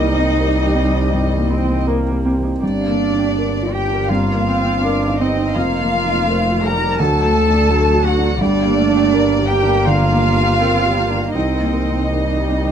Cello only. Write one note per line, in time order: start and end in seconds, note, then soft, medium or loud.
0.00 1.83 D#4 medium
2.63 3.74 D4 medium
3.73 4.10 G4 medium
4.09 5.18 F4 medium
5.18 5.56 D#4 medium
5.55 6.66 F4 medium
6.64 7.01 A#4 medium
7.00 8.07 A4 medium
8.05 8.44 F#4 medium
8.42 9.49 D4 medium
9.50 9.87 G4 medium
9.85 11.34 F4 medium
11.35 12.72 D#4 medium